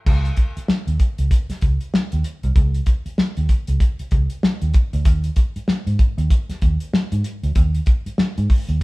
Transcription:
0.06 C#2, kick, crash
0.25 closed hi-hat
0.37 kick, closed hi-hat
0.57 muted fingered electric bass stroke, closed hi-hat
0.68 muted fingered electric bass stroke, snare
0.87 D#2, closed hi-hat
0.99 kick, closed hi-hat
1.18 C#2, closed hi-hat
1.31 kick, closed hi-hat
1.49 muted fingered electric bass stroke, snare, closed hi-hat
1.61 C#2, kick, closed hi-hat
1.81 closed hi-hat
1.94 muted fingered electric bass stroke, snare
2.12 D#2, closed hi-hat
2.24 closed hi-hat
2.43 C2, closed hi-hat
2.56 C#2, kick, closed hi-hat
2.74 closed hi-hat
2.86 kick, closed hi-hat
3.06 muted fingered electric bass stroke, closed hi-hat
3.18 muted fingered electric bass stroke, snare
3.37 D#2, closed hi-hat
3.49 kick, closed hi-hat
3.67 C#2, closed hi-hat
3.80 kick, closed hi-hat
3.99 muted fingered electric bass stroke, closed hi-hat
4.11 C#2, kick, closed hi-hat
4.30 closed hi-hat
4.43 muted fingered electric bass stroke, snare
4.62 D#2, closed hi-hat
4.74 kick, closed hi-hat
4.93 D2, closed hi-hat
5.05 D#2, kick, closed hi-hat
5.24 closed hi-hat
5.36 kick, closed hi-hat
5.56 muted fingered electric bass stroke, closed hi-hat
5.68 muted fingered electric bass stroke, snare
5.87 G#2, closed hi-hat
5.99 kick, closed hi-hat
6.18 D#2, closed hi-hat
6.30 kick, closed hi-hat
6.49 muted fingered electric bass stroke, snare, closed hi-hat
6.62 D#2, kick, closed hi-hat
6.80 closed hi-hat
6.93 muted fingered electric bass stroke, snare
7.12 G#2, closed hi-hat
7.24 closed hi-hat
7.43 D2, closed hi-hat
7.55 D#2, kick, closed hi-hat
7.75 closed hi-hat
7.86 kick, closed hi-hat
8.06 muted fingered electric bass stroke, closed hi-hat
8.18 muted fingered electric bass stroke, snare
8.38 G#2, closed hi-hat
8.50 kick, open hi-hat
8.69 D#2, closed hi-hat

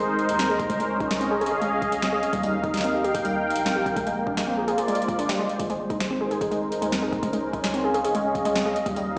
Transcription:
Already playing: G#1 G#3 D#4 A#4 C5
0.19 closed hi-hat
0.29 D#2, closed hi-hat
0.39 C4, snare, closed hi-hat
0.49 G#4
0.59 kick, closed hi-hat
0.70 C#2 G#3 C#4, kick, closed hi-hat
0.80 G#3, closed hi-hat
0.89 D#5
1.00 D#4, kick, closed hi-hat
1.11 G#3, snare, closed hi-hat
1.18 C4 G#4, closed hi-hat
1.31 G#4
1.41 G#4 F5, closed hi-hat
1.46 closed hi-hat
1.51 G#1 G#4
1.61 G#3, closed hi-hat
1.72 C#2
1.82 kick, closed hi-hat
1.92 closed hi-hat
2.02 C4, snare, closed hi-hat
2.13 G#4
2.23 closed hi-hat
2.33 D#2 G3 D#4, kick, closed hi-hat
2.43 G3 A#4, closed hi-hat
2.64 D#4, kick, closed hi-hat
2.74 G3, snare, closed hi-hat
2.77 snare
2.81 C4, snare, closed hi-hat
2.94 G4 G5
3.04 G4, closed hi-hat
3.14 G4, kick, closed hi-hat
3.25 G3, closed hi-hat
3.50 closed hi-hat
3.56 A#1, closed hi-hat
3.66 C4, snare, closed hi-hat
3.76 G4
3.86 kick, closed hi-hat
3.96 A#1 G#3 A#3, kick, closed hi-hat
4.06 G#3, closed hi-hat
4.27 D4, kick
4.37 G#3, snare, closed hi-hat
4.43 C5
4.47 C4 F4
4.57 G#4
4.68 G#4 D5, closed hi-hat
4.78 F1 G#4, closed hi-hat
4.88 G#3, closed hi-hat
4.95 F1, closed hi-hat
5.02 closed hi-hat
5.08 kick, closed hi-hat
5.19 F1 D4, closed hi-hat
5.29 G3, snare, closed hi-hat
5.39 G#3
5.49 closed hi-hat
5.59 G#1 G#3, kick, closed hi-hat
5.70 G#3, closed hi-hat
5.90 D#4, kick, closed hi-hat
6.00 G#3 A#4, snare, closed hi-hat
6.10 C4 D#4
6.21 G#4
6.31 G#4, closed hi-hat
6.41 G#4, kick, closed hi-hat
6.51 G#3, closed hi-hat
6.72 closed hi-hat
6.82 D#2 G#3, closed hi-hat
6.92 C4, snare, closed hi-hat
7.02 G#4
7.13 kick, closed hi-hat
7.23 C#2 G#3 C#4, kick, closed hi-hat
7.33 G#3, closed hi-hat
7.53 D#4, kick, closed hi-hat
7.64 G#3, snare, closed hi-hat
7.72 C4 F5, closed hi-hat
7.78 G#4
7.84 G#4
7.94 G#4 D#5, closed hi-hat
8.04 G#1 G#4, closed hi-hat
8.15 G#3, closed hi-hat
8.25 C#2
8.35 kick, closed hi-hat
8.45 G#3, closed hi-hat
8.55 C4, snare, closed hi-hat
8.66 G#4
8.76 closed hi-hat
8.86 D#2 G3 D#4, kick, closed hi-hat
8.96 G3, closed hi-hat

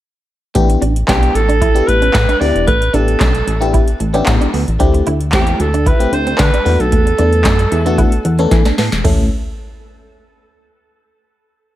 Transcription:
0.55 A1 A3 B3 D4 E4 G4, kick, closed hi-hat
0.69 muted clean electric guitar stroke, closed hi-hat
0.81 A1 D4, closed hi-hat
0.96 closed hi-hat
1.08 B1 B3 C#4 D4 E4 G4, kick, snare, clap, closed hi-hat
1.22 muted clean electric guitar stroke, closed hi-hat
1.35 A1 A4, closed hi-hat
1.49 D4, closed hi-hat
1.61 E4, kick, closed hi-hat
1.74 B3 D4 E4 G4, closed hi-hat
1.87 A1 B4, muted clean electric guitar stroke, closed hi-hat
2.02 C#4, closed hi-hat
2.14 A2, kick, snare, clap, closed hi-hat
2.29 D4, closed hi-hat
2.40 D2 B3 D4 E4 G4 D5, open hi-hat
2.55 E1, closed hi-hat
2.67 A1 A3 B4, kick, closed hi-hat
2.81 muted clean electric guitar stroke, closed hi-hat
2.94 A1 B3 D4 E4 G4 A4, closed hi-hat
3.08 closed hi-hat
3.20 B1 C#4, kick, snare, clap, closed hi-hat
3.34 muted clean electric guitar stroke, closed hi-hat
3.47 A1, closed hi-hat
3.61 B3 D4 E4 G4, closed hi-hat
3.74 E4, kick, closed hi-hat
3.88 closed hi-hat
4.00 A1, muted clean electric guitar stroke, closed hi-hat
4.14 B3 C#4 D4 E4 G4, closed hi-hat
4.26 A2, kick, snare, clap, closed hi-hat
4.41 D4, closed hi-hat
4.54 D2 B3, open hi-hat
4.68 A1, closed hi-hat
4.79 D2 A3 C4 D4 E4 G4, kick, closed hi-hat
4.94 muted clean electric guitar stroke, closed hi-hat
5.07 D2 E4, closed hi-hat
5.21 closed hi-hat
5.32 E2 A3 C4 E4 G4, kick, snare, clap, closed hi-hat
5.47 muted clean electric guitar stroke, closed hi-hat
5.59 D2 A4, closed hi-hat
5.74 D4, closed hi-hat
5.86 E4 B4, kick, closed hi-hat
5.99 A3 C4 E4 G4, closed hi-hat
6.12 D2 C5, muted clean electric guitar stroke, closed hi-hat
6.27 C4, closed hi-hat
6.38 D3 B4, kick, snare, clap, closed hi-hat
6.54 D4, closed hi-hat
6.65 E2 A3 B3 D4 F#4, open hi-hat
6.80 B1 A4, closed hi-hat
6.92 E2 A3, kick, closed hi-hat
7.06 muted clean electric guitar stroke, closed hi-hat
7.18 E2 A3 B3 D4 A4, closed hi-hat
7.33 closed hi-hat
7.45 F#2 C#4, kick, snare, clap, closed hi-hat
7.59 muted clean electric guitar stroke, closed hi-hat
7.72 E2 E5, closed hi-hat
7.86 A3 B3 D4 F#4, closed hi-hat
7.98 E4 F#5, kick, closed hi-hat
8.12 closed hi-hat
8.25 E2 F#5, muted clean electric guitar stroke, closed hi-hat
8.39 A3 B3 C#4 D4 A4, closed hi-hat
8.51 E3 G#5, kick, snare, closed hi-hat
8.65 D4, snare, closed hi-hat
8.78 A2 B3 A5, snare, open hi-hat
8.92 E1, snare, closed hi-hat
9.04 A1 A3 C#4 E4 A4, kick, floor tom, crash

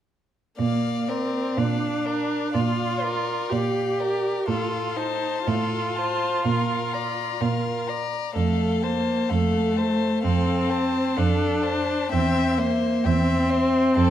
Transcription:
0.59 A#2 A#3 D5 F5
1.08 C4 A#4 D5
1.57 A#2 D4 D5 F5
2.05 A#4 D5
2.53 A#2 F4 D5 F5
3.03 A#4 D5
3.49 A#2 G4 D5 F5
3.99 A#4 D5
4.46 A2 F4 A4 F5
4.96 D#4 C5 A5
5.45 A2 F4 A4 F5
5.96 C5 A5
6.45 A#2 A#4 F5
6.94 D5 A#5
7.41 A#2 A#4 F5
7.88 D5 A#5
8.34 F2 A3 A4 F5
8.82 A#3 C5 A5
9.29 F2 A3 A4 F5
9.77 C5 A5
10.23 F2 C4 A4 F5
10.70 C5 A5
11.17 F2 D4 A4 F5
11.63 C5 A5
12.11 E2 C4 E5 G5
12.58 A#3 C5 E5
13.04 E2 C4 E5 G5
13.50 C5 E5
13.95 F2 A4 A5

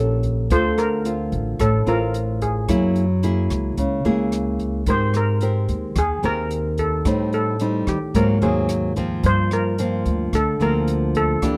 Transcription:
Already playing: A#1 A#2 C#4 G4 A4
0.23 kick, closed hi-hat
0.50 D2 D3 C4 F4 A4 C5, kick, closed hi-hat
0.78 A#4, cross-stick, closed hi-hat
1.05 C4 F4, closed hi-hat
1.32 A1, kick, closed hi-hat
1.59 A1 A2 A4, kick, cross-stick, closed hi-hat
1.86 A1 C4 F4 A#4, closed hi-hat
2.14 closed hi-hat
2.41 G#4, kick, closed hi-hat
2.68 F#2 F#3 A#3 E4 G#4, kick, cross-stick, closed hi-hat
2.96 closed hi-hat
3.23 A#3 E4 G#4, closed hi-hat
3.50 C#2, kick, cross-stick, closed hi-hat
3.77 C#2 C#3, kick, closed hi-hat
4.05 C#2 A#3 E4 G#4, closed hi-hat
4.32 cross-stick, closed hi-hat
4.59 kick, closed hi-hat
4.86 G#2 G#3 C4 G4 A#4 C5, kick, closed hi-hat
5.14 A#4, cross-stick, closed hi-hat
5.41 C4 G4 A#4, closed hi-hat
5.68 D#2, kick, closed hi-hat
5.96 D#2 D#3 G#4, kick, cross-stick, closed hi-hat
6.23 D#2 C4 G4 A#4, closed hi-hat
6.51 closed hi-hat
6.78 A4, kick, closed hi-hat
7.05 A2 G3 C4 D#4, kick, cross-stick, closed hi-hat
7.33 A4, closed hi-hat
7.60 G3 C4 D#4, closed hi-hat
7.87 D#3 G4, kick, cross-stick, closed hi-hat
8.14 G#2 F#3 A#3 C4 A#4, kick, closed hi-hat
8.41 D#2 F#3 A#3 C4 G#4, closed hi-hat
8.69 cross-stick, closed hi-hat
8.96 F3 A#3 C4, kick, closed hi-hat
9.23 G2 C5, kick, closed hi-hat
9.51 A#4, cross-stick, closed hi-hat
9.78 F3 A#3 C4, closed hi-hat
10.05 D2, kick, closed hi-hat
10.33 D2 D3 A4, kick, cross-stick, closed hi-hat
10.60 D2 F3 A#3 C4 A#4, closed hi-hat
10.88 closed hi-hat
11.15 A4, kick, closed hi-hat
11.42 E2 E3 A#3 D4 G4, kick, cross-stick, closed hi-hat

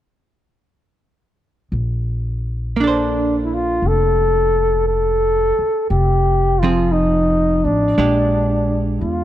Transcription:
1.72 A#1
2.76 A#3 D4
2.82 D4 A4
2.87 C5
3.44 E4
3.54 F4
3.82 F1
3.87 A4
4.87 A4
5.59 muted upright bass stroke
5.90 F1 G4
6.59 F3 F4
6.63 C4 G#4
6.92 D#4
7.64 A1 D4
7.98 A#1 G#3 D4 G4
9.01 E2 F4

